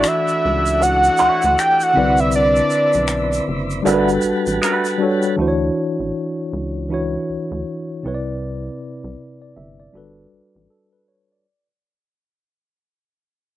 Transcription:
0.00 0.74 E3 medium
0.00 1.92 A3 medium
0.00 0.75 D4 medium
0.00 1.92 D4 medium
0.00 0.75 E4 medium
0.00 3.81 E4 medium
0.00 0.76 F#4 medium
0.00 1.91 F#4 medium
0.00 0.80 E5 medium
0.00 finger snap medium
0.00 shaker medium
0.07 0.84 E5 loud
0.28 shaker soft
0.45 1.10 C#2 medium
0.66 shaker soft
0.81 1.61 F#5 loud
0.81 muted clean electric guitar stroke soft
0.81 shaker medium
1.04 shaker soft
1.17 1.42 A3 medium
1.17 1.42 E4 medium
1.17 1.43 F#4 medium
1.17 1.43 C#5 medium
1.17 shaker medium
1.21 1.30 D2 soft
1.42 1.56 D2 medium
1.42 shaker soft
1.59 1.84 G5 loud
1.59 finger snap medium
1.59 shaker medium
1.80 2.21 F#5 loud
1.80 shaker soft
1.94 2.61 C2 loud
1.94 3.40 D3 medium
1.94 3.40 C4 medium
1.94 3.83 C4 medium
1.94 3.83 D4 medium
1.94 3.41 E4 medium
1.94 3.83 B4 medium
1.94 3.42 B4 medium
1.98 3.42 D5 medium
2.17 2.34 E5 loud
2.17 shaker soft
2.32 3.44 D5 loud
2.32 shaker medium
2.56 shaker soft
2.70 shaker soft
2.93 3.40 B1 medium
2.93 shaker soft
3.08 finger snap medium
3.08 shaker medium
3.33 shaker soft
3.48 3.80 F#1 medium
3.70 shaker soft
3.82 4.18 G1 loud
3.82 4.93 G3 medium
3.82 5.36 G3 medium
3.82 4.08 A3 medium
3.82 4.94 D4 medium
3.82 4.08 D4 medium
3.82 4.94 F#4 medium
3.82 5.36 F#4 medium
3.82 5.36 A4 medium
3.82 5.36 B4 medium
3.87 4.08 F#4 medium
3.87 4.95 A4 medium
3.87 3.94 A#4 medium
3.87 4.09 B4 medium
3.87 shaker medium
3.94 4.99 B4 medium
4.09 shaker soft
4.22 4.33 A1 soft
4.22 shaker soft
4.47 4.60 A1 medium
4.47 shaker medium
4.62 4.85 A3 medium
4.62 4.85 D4 medium
4.62 4.85 F#4 medium
4.62 4.86 B4 loud
4.62 finger snap medium
4.62 shaker medium
4.85 shaker soft
4.98 5.35 G3 medium
4.98 5.36 D4 medium
4.98 5.36 F#4 medium
4.98 5.37 A4 medium
5.03 5.37 C#5 medium
5.23 shaker soft
5.36 5.70 D2 loud
5.36 6.82 E3 medium
5.36 6.83 D4 medium
5.36 6.83 E4 medium
5.36 6.84 F#4 medium
5.42 5.47 C5 medium
5.48 6.88 C#5 medium
6.00 6.12 A1 medium
6.53 7.17 C#2 medium
6.89 8.03 E3 medium
6.89 8.03 D4 medium
6.89 8.04 E4 medium
6.89 8.05 F#4 medium
6.94 8.05 C#5 medium
7.30 7.38 D2 soft
7.51 7.64 D2 medium
8.03 8.69 C2 loud
8.03 9.48 C3 medium
8.03 9.49 C4 medium
8.03 9.50 E4 medium
8.03 9.50 B4 medium
8.08 8.13 C#5 medium
8.14 8.85 D5 medium
9.04 9.16 C2 medium
9.42 9.55 D5 medium
9.57 9.88 G1 medium
9.57 9.77 E5 medium
9.80 10.14 D5 medium
9.93 10.26 G1 loud
9.93 11.38 G3 medium
9.93 11.39 D4 medium
9.93 11.39 F#4 medium
9.93 10.69 A4 medium
9.97 10.71 B4 medium
10.33 10.41 A1 soft
10.56 10.68 A1 medium
10.70 10.91 A4 medium
10.93 11.07 B4 medium
11.08 11.29 C#5 medium
11.32 11.67 D5 soft

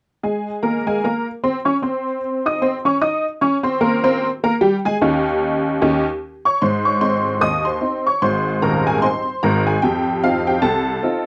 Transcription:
0.23 0.45 G#3 medium
0.23 0.45 G#4 medium
0.23 0.46 G#5 medium
0.63 0.76 A#3 medium
0.63 0.76 A#4 medium
0.63 0.76 A#5 medium
0.87 0.96 G#3 medium
0.87 0.96 G#4 medium
0.87 0.96 G#5 medium
1.04 1.26 A#3 medium
1.04 1.26 A#4 medium
1.04 1.26 A#5 medium
1.44 1.56 C4 medium
1.44 1.56 C5 medium
1.44 1.57 C6 medium
1.65 1.75 C#4 medium
1.65 1.75 C#5 medium
1.65 1.75 C#6 medium
1.82 2.17 C4 medium
1.82 2.18 C5 medium
1.82 2.18 C6 medium
2.46 2.55 D#4 medium
2.46 2.55 D#5 medium
2.46 2.55 D#6 medium
2.62 2.75 C4 medium
2.62 2.75 C5 medium
2.62 2.75 C6 medium
2.85 2.95 C#4 medium
2.85 2.95 C#5 medium
2.85 2.95 C#6 medium
3.01 3.24 D#4 medium
3.01 3.24 D#5 medium
3.01 3.24 D#6 medium
3.41 3.55 C#4 medium
3.41 3.55 C#5 medium
3.41 3.55 C#6 medium
3.63 3.73 C4 medium
3.63 3.73 C5 medium
3.63 3.74 C6 medium
3.81 3.94 A#3 medium
3.81 3.94 A#4 medium
3.81 3.94 A#5 medium
4.04 4.26 C4 medium
4.04 4.26 C5 medium
4.04 4.27 C6 medium
4.44 4.53 A#3 medium
4.44 4.53 A#4 medium
4.44 4.53 A#5 medium
4.61 4.74 G3 loud
4.61 4.74 G4 medium
4.61 4.74 G5 medium
4.85 4.95 G#3 medium
4.85 4.95 G#4 medium
4.85 4.95 G#5 medium
5.02 5.24 D#2 medium
5.02 5.24 C#4 medium
5.02 5.24 D#4 medium
5.02 5.24 G4 medium
5.82 6.04 D#2 medium
5.82 6.04 C#4 medium
5.82 6.04 D#4 medium
5.82 6.04 G4 medium
6.45 6.62 C#5 medium
6.45 6.62 C#6 medium
6.62 6.97 G#2 medium
6.62 6.85 C5 medium
6.62 6.86 C6 medium
6.85 7.02 C#5 medium
6.85 7.02 C#6 medium
7.01 7.24 C4 medium
7.01 7.24 D#4 soft
7.01 7.40 C5 medium
7.01 7.42 C6 medium
7.41 7.76 D#2 medium
7.41 7.65 D#5 medium
7.41 7.66 D#6 medium
7.65 8.04 C5 medium
7.65 8.06 C6 medium
7.81 8.04 C4 medium
7.81 8.04 D#4 medium
8.07 8.23 C#5 medium
8.07 8.23 C#6 medium
8.22 8.54 G#1 medium
8.22 8.55 G#2 medium
8.22 8.60 C5 medium
8.22 8.63 C6 medium
8.62 8.95 D#1 medium
8.62 8.95 D#2 medium
8.62 8.85 A#4 medium
8.62 8.86 A#5 medium
8.87 9.03 G#4 medium
8.87 9.03 G#5 medium
9.02 9.25 C4 soft
9.02 9.25 D#4 soft
9.02 9.41 C5 medium
9.02 9.43 C6 loud
9.43 9.75 G#1 medium
9.43 9.75 G#2 medium
9.43 9.65 A#4 medium
9.43 9.66 A#5 medium
9.67 9.82 G#4 medium
9.67 9.83 G#5 medium
9.82 10.17 F2 medium
9.82 10.21 G4 medium
9.82 10.22 G5 medium
10.24 10.45 C4 medium
10.24 10.46 D#4 medium
10.24 10.46 F4 medium
10.24 10.47 F5 medium
10.47 10.63 G4 medium
10.47 10.63 G5 medium
10.62 10.96 C2 medium
10.62 11.26 A4 medium
10.62 11.26 A5 loud
11.03 11.25 C4 medium
11.03 11.25 D#4 medium
11.03 11.25 F4 medium

